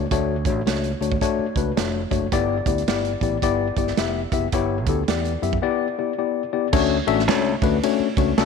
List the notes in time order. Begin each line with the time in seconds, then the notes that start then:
0.11 D2 A3 D4 F#4 C#5, kick, closed hi-hat
0.45 A1 A3 D4 F#4 C#5, kick, closed hi-hat
0.66 C#2 A3 D4 F#4 C#5, snare, closed hi-hat
0.84 closed hi-hat
1.01 D2 A3 D4 F#4 C#5, closed hi-hat
1.12 kick
1.21 A3 D4 F#4 C#5, kick, closed hi-hat
1.39 muted fingered electric bass stroke
1.55 C#2 A3 D4 F#4 B4, kick, closed hi-hat
1.77 F1 A3 D4 F#4 C#5, snare, closed hi-hat
2.11 F#1 A3 D4 F#4 C#5, kick, closed hi-hat
2.32 G1 B3 E4 G4 D5, kick, closed hi-hat
2.66 D2 B3 E4 G4 D5, kick, closed hi-hat
2.78 closed hi-hat
2.87 G1 B3 E4 G4 D5, snare, closed hi-hat
3.05 closed hi-hat
3.21 A1 B3 E4 G4 D5, kick, closed hi-hat
3.42 G1 B3 E4 G4 D5, kick, closed hi-hat
3.76 G1 B3 E4 G4 D5, kick, closed hi-hat
3.87 snare
3.97 F1 B3 E4 G4 E5, snare, closed hi-hat
4.32 F#1 B3 E4 G4 E5, kick, closed hi-hat
4.52 G1 B3 E4 G4 C#5, kick, closed hi-hat
4.86 D2 B3 E4 G4 A4, kick, closed hi-hat
5.08 E2 B3 E4 G4 D5, snare, closed hi-hat
5.25 closed hi-hat
5.42 F#2 B3 E4 G4 E5, closed hi-hat
5.53 kick
5.62 B3 E4 G4 D5
5.98 B3 E4 G4 D5
6.18 B3 E4 G4 D5
6.53 B3 E4 G4 D5
6.73 D2 A3 C#4 D4 F#4 C#5, kick, crash
7.07 A1 A3 C#4 D4 F#4 E5, ride
7.19 snare
7.28 C#2 A3 C#4 D4 F#4 C#5, snare, ride
7.62 D2 A3 C#4 D4 F#4 B4, kick, ride
7.83 A3 C#4 D4 F#4 C#5, ride
8.00 muted fingered electric bass stroke
8.17 C#2 A3 C#4 D4 F#4 C#5, kick, ride
8.37 C2 A3 C#4 D4 F#4 A4, snare, ride